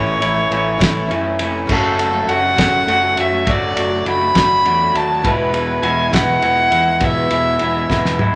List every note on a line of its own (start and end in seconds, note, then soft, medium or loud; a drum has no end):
0.00 0.18 A1 loud
0.00 0.20 A2 medium
0.00 0.19 E3 medium
0.00 0.20 A3 medium
0.00 0.21 C#4 medium
0.00 0.21 E4 medium
0.00 1.11 C#5 medium
0.19 0.48 A1 medium
0.19 0.35 E3 medium
0.19 0.34 A3 medium
0.19 0.34 C#4 medium
0.19 ride medium
0.23 0.32 E4 medium
0.33 0.65 A3 soft
0.33 0.64 C#4 medium
0.33 0.61 E4 medium
0.50 0.78 A1 medium
0.50 1.09 E3 medium
0.50 0.83 A3 medium
0.50 0.81 C#4 medium
0.50 0.80 E4 medium
0.50 ride medium
0.63 0.77 A3 soft
0.63 0.78 C#4 medium
0.63 0.78 E4 medium
0.77 1.08 A1 medium
0.77 1.08 A2 medium
0.77 1.05 E3 medium
0.77 1.06 A3 loud
0.77 1.07 C#4 loud
0.77 1.07 E4 loud
0.77 kick medium
0.77 ride loud
0.82 1.11 A3 medium
0.82 snare loud
1.06 1.37 F#2 medium
1.06 1.23 E3 medium
1.06 1.23 A3 medium
1.06 1.22 C#4 medium
1.06 1.20 E4 medium
1.10 1.68 E3 medium
1.10 1.42 A3 medium
1.10 1.39 E4 medium
1.10 ride medium
1.21 1.53 A3 soft
1.21 1.52 C#4 medium
1.21 1.50 E4 medium
1.39 1.67 F1 medium
1.39 1.71 A3 medium
1.39 1.68 C#4 medium
1.39 1.68 E4 medium
1.39 ride medium
1.51 1.66 A3 soft
1.51 1.66 C#4 soft
1.51 1.67 E4 medium
1.66 2.24 F#1 medium
1.66 1.97 F#2 medium
1.66 1.98 C#3 medium
1.66 1.95 F#3 medium
1.66 1.96 A3 medium
1.66 1.97 C#4 medium
1.66 1.98 F#4 medium
1.66 kick loud
1.66 crash loud
1.70 2.00 A3 loud
1.70 1.99 C#4 medium
1.70 1.99 F#4 medium
1.70 2.30 A4 loud
1.96 2.12 F#3 medium
1.96 2.12 A3 medium
1.96 2.11 C#4 medium
1.96 2.09 F#4 medium
1.96 ride medium
2.02 2.28 F#3 medium
2.10 2.42 F#3 soft
2.10 2.42 A3 soft
2.10 2.40 C#4 soft
2.10 2.39 F#4 medium
2.27 2.55 F#1 medium
2.27 2.59 F#3 medium
2.27 2.58 A3 medium
2.27 2.57 C#4 medium
2.27 3.21 F#5 loud
2.27 ride medium
2.31 2.56 F#4 medium
2.40 2.55 F#3 soft
2.40 2.55 A3 soft
2.40 2.56 C#4 medium
2.40 2.56 F#4 medium
2.56 2.86 F#1 medium
2.56 2.86 F#2 medium
2.56 2.86 C#3 medium
2.56 2.82 F#3 medium
2.56 2.83 A3 medium
2.56 2.84 C#4 loud
2.56 2.85 F#4 medium
2.56 kick medium
2.56 snare loud
2.56 ride loud
2.84 3.15 F#1 medium
2.84 3.00 F#3 medium
2.84 3.00 A3 medium
2.84 2.99 C#4 medium
2.84 2.98 F#4 medium
2.88 ride medium
2.99 3.31 F#3 soft
2.99 3.31 A3 soft
2.99 3.30 C#4 medium
2.99 3.29 F#4 medium
3.16 3.44 F#2 medium
3.16 3.44 F#3 medium
3.16 3.45 A3 medium
3.16 3.46 C#4 medium
3.16 3.45 F#4 medium
3.16 3.52 E5 medium
3.16 ride medium
3.30 3.43 F#3 soft
3.30 3.44 A3 soft
3.30 3.45 C#4 medium
3.30 3.45 F#4 medium
3.44 3.74 F#1 loud
3.44 3.72 F#3 medium
3.44 3.73 A3 medium
3.44 3.73 D4 medium
3.44 3.75 F#4 medium
3.44 kick loud
3.44 ride loud
3.50 4.08 D5 loud
3.73 4.04 F#1 medium
3.73 3.89 F#3 medium
3.73 3.90 A3 medium
3.73 3.89 D4 medium
3.73 3.88 F#4 medium
3.73 ride medium
3.89 4.20 A3 soft
3.89 4.20 D4 medium
3.89 4.18 F#4 medium
4.05 4.34 F#1 medium
4.05 4.63 F#3 medium
4.05 4.36 A3 medium
4.05 4.34 D4 medium
4.05 4.34 F#4 medium
4.05 4.98 B5 loud
4.05 ride medium
4.19 4.32 A3 soft
4.19 4.33 D4 soft
4.19 4.34 F#4 medium
4.33 4.63 F#1 medium
4.33 4.62 F#3 medium
4.33 4.63 A3 medium
4.33 4.65 D4 loud
4.33 4.65 F#4 loud
4.33 kick medium
4.33 snare loud
4.33 ride loud
4.63 4.93 E2 loud
4.63 4.79 F#3 medium
4.63 4.80 A3 medium
4.63 4.79 D4 medium
4.63 4.77 F#4 medium
4.63 ride medium
4.78 5.10 A3 soft
4.78 5.08 D4 medium
4.78 5.06 F#4 medium
4.94 5.22 D#2 medium
4.94 5.23 A3 medium
4.94 5.23 D4 medium
4.94 5.22 F#4 medium
4.94 5.28 A5 loud
4.94 ride medium
5.08 5.23 A3 soft
5.08 5.23 D4 medium
5.08 5.23 F#4 medium
5.22 5.79 E1 medium
5.22 5.53 E2 medium
5.22 5.53 B2 medium
5.22 5.50 E3 medium
5.22 5.51 G#3 medium
5.22 5.52 B3 medium
5.22 5.53 E4 medium
5.22 kick loud
5.22 ride loud
5.26 5.84 B4 loud
5.51 5.67 E3 medium
5.51 5.68 G#3 medium
5.51 5.67 B3 medium
5.51 5.66 E4 medium
5.51 ride medium
5.56 5.82 E3 medium
5.67 5.99 E3 soft
5.67 5.98 G#3 medium
5.67 5.97 B3 medium
5.67 5.96 E4 medium
5.82 6.11 E1 medium
5.82 6.14 E3 medium
5.82 6.13 G#3 medium
5.82 6.12 B3 medium
5.82 6.12 E4 medium
5.82 6.15 G#5 medium
5.82 ride medium
5.97 6.11 E3 soft
5.97 6.11 G#3 soft
5.97 6.12 B3 medium
5.97 6.12 E4 medium
6.11 6.41 E1 loud
6.11 6.41 E2 medium
6.11 6.42 B2 medium
6.11 6.40 E3 medium
6.11 6.41 G#3 loud
6.11 6.42 B3 loud
6.11 6.42 E4 medium
6.11 7.05 F#5 loud
6.11 kick medium
6.11 snare loud
6.11 ride loud
6.41 6.70 E1 medium
6.41 6.57 E3 medium
6.41 6.57 G#3 medium
6.41 6.57 B3 medium
6.41 6.55 E4 medium
6.41 ride medium
6.57 6.87 E3 soft
6.57 6.86 G#3 soft
6.57 6.85 B3 soft
6.57 6.84 E4 soft
6.70 6.99 E2 medium
6.70 7.01 E3 medium
6.70 7.01 G#3 medium
6.70 7.02 B3 medium
6.70 7.02 E4 medium
6.70 ride medium
6.86 7.00 E3 soft
6.86 7.00 G#3 soft
6.86 7.01 B3 soft
6.86 7.01 E4 medium
7.00 7.29 E1 loud
7.00 7.30 E2 medium
7.00 7.31 B2 medium
7.00 7.29 E3 medium
7.00 7.30 G#3 medium
7.00 7.31 B3 medium
7.00 7.32 E4 medium
7.00 8.21 E5 loud
7.00 kick loud
7.00 ride loud
7.30 7.58 E1 medium
7.30 7.46 E3 medium
7.30 7.46 G#3 medium
7.30 7.45 B3 medium
7.30 7.44 E4 medium
7.30 ride medium
7.45 7.76 E3 medium
7.45 7.76 G#3 medium
7.45 7.75 B3 soft
7.45 7.73 E4 medium
7.59 7.88 E1 medium
7.59 7.91 E3 medium
7.59 7.90 G#3 medium
7.59 7.89 B3 medium
7.59 7.88 E4 medium
7.59 ride medium
7.74 7.89 E3 medium
7.74 7.90 G#3 medium
7.74 7.89 B3 medium
7.74 7.90 E4 medium
7.89 8.17 E1 medium
7.89 8.19 E2 loud
7.89 8.19 B2 loud
7.89 8.16 E3 loud
7.89 8.17 G#3 loud
7.89 8.19 B3 loud
7.89 8.20 E4 loud
7.89 kick medium
7.89 snare medium
8.05 snare medium
8.18 8.35 D2 medium
8.18 8.33 E3 medium
8.18 8.34 G#3 medium
8.18 8.34 B3 medium
8.18 8.32 E4 medium
8.18 high tom medium